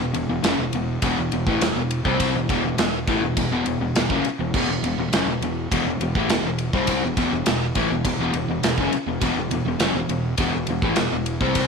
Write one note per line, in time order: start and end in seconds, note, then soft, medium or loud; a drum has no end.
0.00 0.14 E1 medium
0.00 0.12 E2 medium
0.00 0.13 B2 medium
0.14 0.28 E1 medium
0.14 0.28 E2 medium
0.14 0.28 B2 medium
0.14 ride medium
0.29 0.43 E1 medium
0.29 0.42 E2 medium
0.29 0.43 B2 medium
0.43 0.57 F#1 medium
0.43 0.57 F#2 medium
0.43 0.57 C#3 loud
0.43 snare loud
0.43 ride loud
0.59 0.73 E1 medium
0.59 0.73 E2 medium
0.59 0.74 B2 medium
0.73 1.01 E1 medium
0.73 0.97 E2 medium
0.73 0.97 B2 medium
0.73 ride medium
1.02 1.16 E1 medium
1.02 1.17 E2 loud
1.02 1.17 B2 loud
1.02 kick loud
1.02 ride loud
1.19 1.32 E1 medium
1.19 1.32 E2 medium
1.19 1.33 B2 medium
1.32 1.46 E1 medium
1.32 1.47 E2 medium
1.32 1.47 B2 medium
1.32 ride medium
1.47 1.60 A1 medium
1.47 1.61 A2 medium
1.47 1.61 E3 medium
1.47 kick loud
1.61 1.75 E1 medium
1.61 1.75 E2 medium
1.61 1.75 B2 medium
1.61 snare loud
1.61 ride loud
1.75 2.03 E1 medium
1.75 1.99 E2 medium
1.75 1.99 B2 medium
1.91 ride medium
2.05 2.32 C2 loud
2.05 2.34 C3 medium
2.05 2.34 G3 medium
2.05 2.34 C4 medium
2.05 kick loud
2.20 kick loud
2.20 ride loud
2.34 2.48 E1 medium
2.34 2.48 E2 medium
2.34 2.49 B2 medium
2.49 2.63 E1 loud
2.49 2.63 E2 medium
2.49 2.63 B2 medium
2.49 kick loud
2.49 ride medium
2.64 2.77 E1 medium
2.64 2.78 E2 medium
2.64 2.78 B2 medium
2.78 3.05 E1 medium
2.78 3.02 E2 medium
2.78 3.02 B2 medium
2.78 snare loud
2.78 ride loud
3.07 3.21 A1 medium
3.07 3.22 A2 medium
3.07 3.22 E3 loud
3.07 kick loud
3.07 ride medium
3.22 3.36 E1 medium
3.22 3.37 E2 medium
3.22 3.38 B2 medium
3.37 3.50 E1 medium
3.37 3.51 E2 medium
3.37 3.52 B2 medium
3.37 kick loud
3.37 ride loud
3.51 3.65 E1 medium
3.51 3.65 E2 medium
3.51 3.66 B2 medium
3.66 3.79 E1 medium
3.66 3.80 E2 medium
3.66 3.81 B2 medium
3.66 ride medium
3.80 3.94 E1 medium
3.80 3.95 E2 medium
3.80 3.95 B2 medium
3.95 4.09 E1 medium
3.95 4.10 E2 medium
3.95 4.10 B2 medium
3.95 snare loud
3.95 ride medium
4.10 4.24 F#1 medium
4.10 4.24 F#2 medium
4.10 4.25 C#3 medium
4.10 kick loud
4.25 muted fingered electric bass stroke soft
4.25 muted overdriven electric guitar stroke medium
4.25 ride medium
4.39 4.53 E1 medium
4.39 4.55 E2 medium
4.39 4.55 B2 medium
4.54 4.68 E1 medium
4.54 4.69 E2 medium
4.54 4.69 B2 medium
4.54 kick loud
4.54 crash medium
4.68 4.82 E1 medium
4.68 4.85 E2 medium
4.68 4.85 B2 medium
4.83 4.96 E1 medium
4.83 4.99 E2 medium
4.83 4.99 B2 medium
4.83 ride medium
4.98 5.11 E1 medium
4.98 5.13 E2 medium
4.98 5.14 B2 medium
5.12 5.25 F#1 medium
5.12 5.27 F#2 loud
5.12 5.28 C#3 medium
5.12 snare loud
5.12 ride medium
5.26 5.40 E1 medium
5.30 5.43 E2 medium
5.30 5.43 B2 medium
5.41 5.68 E1 medium
5.41 5.66 E2 medium
5.41 5.66 B2 medium
5.41 ride medium
5.72 5.84 E1 medium
5.72 5.86 E2 medium
5.72 5.86 B2 loud
5.72 kick loud
5.72 ride loud
5.84 5.98 E1 medium
5.84 6.01 E2 medium
5.84 6.01 B2 medium
5.99 6.13 E1 medium
5.99 6.16 E2 medium
5.99 6.16 B2 medium
5.99 ride medium
6.15 6.28 A1 loud
6.15 6.29 A2 medium
6.15 6.30 E3 loud
6.15 kick loud
6.29 6.42 E1 medium
6.29 6.44 E2 medium
6.29 6.45 B2 medium
6.29 snare loud
6.29 ride loud
6.43 6.70 E1 medium
6.43 6.69 E2 medium
6.43 6.69 B2 medium
6.58 ride medium
6.73 7.00 C2 medium
6.73 7.02 C3 medium
6.73 7.02 G3 loud
6.73 7.02 C4 medium
6.73 kick loud
6.87 kick loud
6.87 ride loud
7.02 7.16 E1 medium
7.02 7.16 E2 medium
7.02 7.17 B2 medium
7.17 7.31 E1 loud
7.17 7.31 E2 loud
7.17 7.31 B2 loud
7.17 kick loud
7.17 ride medium
7.32 7.46 E1 medium
7.32 7.47 E2 medium
7.32 7.47 B2 medium
7.46 7.74 E1 medium
7.46 7.71 E2 medium
7.46 7.71 B2 medium
7.46 snare loud
7.46 ride loud
7.75 7.89 A1 loud
7.75 7.90 A2 medium
7.75 7.90 E3 medium
7.75 kick loud
7.75 ride medium
7.89 8.03 E1 medium
7.89 8.05 E2 medium
7.89 8.05 B2 medium
8.05 8.18 E1 medium
8.05 8.19 E2 medium
8.05 8.20 B2 medium
8.05 kick medium
8.05 ride loud
8.18 8.32 E1 loud
8.18 8.34 E2 medium
8.18 8.34 B2 medium
8.34 8.47 E1 medium
8.34 8.50 E2 medium
8.34 8.50 B2 medium
8.34 ride medium
8.48 8.62 E1 medium
8.48 8.63 E2 medium
8.48 8.64 B2 medium
8.63 8.77 E1 medium
8.63 8.79 E2 medium
8.63 8.79 B2 medium
8.63 snare loud
8.63 ride loud
8.78 8.92 F#1 medium
8.78 8.93 F#2 medium
8.78 8.93 C#3 loud
8.78 kick loud
8.92 muted fingered electric bass stroke soft
8.92 muted overdriven electric guitar stroke medium
8.92 ride medium
9.06 9.20 E1 medium
9.06 9.22 E2 medium
9.06 9.23 B2 medium
9.21 9.35 E1 medium
9.21 9.36 E2 medium
9.21 9.37 B2 loud
9.21 kick loud
9.21 ride loud
9.36 9.50 E1 medium
9.36 9.52 E2 medium
9.36 9.52 B2 medium
9.51 9.64 E1 medium
9.51 9.67 E2 medium
9.51 9.67 B2 medium
9.51 ride medium
9.65 9.79 E1 medium
9.65 9.81 E2 medium
9.65 9.82 B2 medium
9.80 9.94 F#1 medium
9.80 9.95 F#2 medium
9.80 9.95 C#3 loud
9.80 snare loud
9.80 ride medium
9.94 10.08 E1 medium
9.94 10.09 E2 medium
9.94 10.10 B2 medium
10.09 10.36 E1 medium
10.09 10.33 E2 medium
10.09 10.34 B2 medium
10.09 ride medium
10.38 10.52 E1 medium
10.38 10.53 E2 medium
10.38 10.54 B2 loud
10.38 kick loud
10.38 ride loud
10.54 10.67 E1 medium
10.54 10.69 E2 medium
10.54 10.69 B2 medium
10.67 10.82 E1 medium
10.67 10.84 E2 medium
10.67 ride medium
10.71 10.84 B2 medium
10.82 10.96 A1 medium
10.82 10.97 A2 medium
10.82 10.97 E3 loud
10.82 kick loud
10.96 11.11 E1 medium
10.96 11.11 E2 medium
10.96 11.12 B2 medium
10.96 snare loud
10.96 ride loud
11.12 11.39 E1 medium
11.12 11.36 E2 medium
11.12 11.36 B2 medium
11.26 ride medium
11.41 11.67 C2 medium
11.41 11.67 C3 medium
11.41 11.67 G3 medium
11.41 11.67 C4 loud
11.41 kick loud
11.55 kick loud
11.55 ride loud